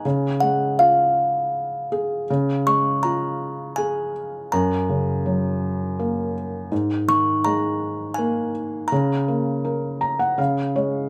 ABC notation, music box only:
X:1
M:3/4
L:1/8
Q:1/4=81
K:C#mix
V:1 name="Music box"
g f e2 z2 | z c' a2 g2 | a2 z4 | z c' a2 g2 |
a2 z4 |]